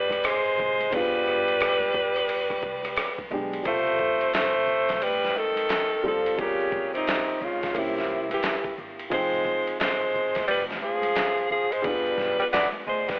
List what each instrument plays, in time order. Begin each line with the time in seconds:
Already playing: upright piano F3 C4 D#4 G5, tenor saxophone G3, alto saxophone B4
0.10 kick, cross-stick, ride, high conga, maracas
0.23 tenor saxophone G#3, alto saxophone C5, cross-stick, hi-hat pedal, ride, maracas
0.44 maracas
0.57 upright bass F1, kick, low conga, maracas
0.79 ride, high conga, maracas
0.90 upright bass G1, upright piano B3 D4 G#4, alto saxophone B4, kick, ride, maracas
0.95 tenor saxophone G3, upright piano F4
1.13 maracas
1.25 cross-stick, high conga, maracas
1.46 ride, maracas
1.60 cross-stick, hi-hat pedal, ride, maracas
1.80 high conga, maracas
1.94 kick, low conga, maracas
2.14 cross-stick, ride, maracas
2.28 ride, maracas
2.49 kick, cross-stick, maracas
2.61 upright bass C2, kick, high conga, maracas
2.82 cross-stick, ride, high conga, maracas
2.96 cross-stick, hi-hat pedal, ride, maracas
3.18 kick, maracas
3.30 upright bass B1, upright piano G#3 B3 D4 G4, low conga, maracas
3.52 ride, high conga, maracas
3.63 upright bass C2, upright piano G3 C4 F4, tenor saxophone A3, alto saxophone C5, kick, ride, maracas
3.69 upright piano A4
3.86 maracas
3.98 kick, maracas
4.19 ride, maracas
4.32 tenor saxophone A3, alto saxophone C5, snare, hi-hat pedal, ride, maracas
4.53 maracas
4.67 low conga, maracas
4.88 upright bass B1, kick, snare, ride, maracas
5.01 upright bass A1, tenor saxophone G3, alto saxophone B4, ride, maracas
5.22 snare, maracas
5.36 tenor saxophone D#3, alto saxophone A4, high conga, maracas
5.56 ride, high conga, maracas
5.69 snare, hi-hat pedal, ride, maracas
5.91 maracas
6.03 tenor saxophone F3, upright piano G3 C4 F4 A4, low conga, maracas
6.08 alto saxophone A4
6.26 ride, maracas
6.37 upright bass G1, tenor saxophone C#3, upright piano G3 C4 F4, alto saxophone G4, kick, ride, maracas
6.42 upright piano A#4
6.60 maracas
6.71 upright bass A#1, kick, maracas
6.93 tenor saxophone C3, alto saxophone D#4, ride, maracas
7.06 snare, hi-hat pedal, ride, maracas
7.27 maracas
7.41 upright bass C#2, tenor saxophone C#3, alto saxophone F4, low conga, maracas
7.62 kick, snare, ride, maracas
7.73 upright bass C2, tenor saxophone C3, upright piano A#3 C#4 E4, kick, ride, maracas
7.78 alto saxophone E4, upright piano G4
7.96 snare, maracas
8.08 high conga, maracas
8.29 tenor saxophone E3, ride, high conga, maracas
8.34 alto saxophone G4
8.43 snare, hi-hat pedal, ride, maracas
8.64 kick, maracas
8.78 upright bass G1, low conga, maracas
8.99 ride, maracas
9.10 upright bass F1, upright piano F3 C4 D#4, tenor saxophone G#3, alto saxophone C5, kick, ride, maracas
9.16 upright piano G5
9.34 maracas
9.45 kick, maracas
9.67 ride, maracas
9.80 tenor saxophone G#3, alto saxophone C5, snare, hi-hat pedal, ride, maracas
10.00 maracas
10.15 low conga, maracas
10.34 upright bass G1, kick, snare, ride, maracas
10.47 upright bass F1, tenor saxophone G3, alto saxophone B4, ride, maracas
10.69 snare, maracas
10.81 tenor saxophone F3, alto saxophone G#4, high conga, maracas
11.02 ride, high conga, maracas
11.15 snare, hi-hat pedal, ride, maracas
11.37 maracas
11.50 tenor saxophone F3, alto saxophone G#4, low conga, maracas
11.71 tenor saxophone G#3, alto saxophone C5, ride, maracas
11.82 upright bass G1, tenor saxophone G3, upright piano B3 D4 G#4, alto saxophone B4, kick, ride, maracas
11.87 upright piano F4
12.06 maracas
12.17 upright bass B1, kick, snare, high conga, maracas
12.39 tenor saxophone G3, alto saxophone B4, ride, maracas
12.52 tenor saxophone B3, alto saxophone D5, snare, hi-hat pedal, ride, maracas
12.72 high conga, maracas
12.87 upright bass D2, tenor saxophone G#3, alto saxophone C5, low conga, maracas
13.07 tenor saxophone G3, alto saxophone B4, kick, snare, ride, maracas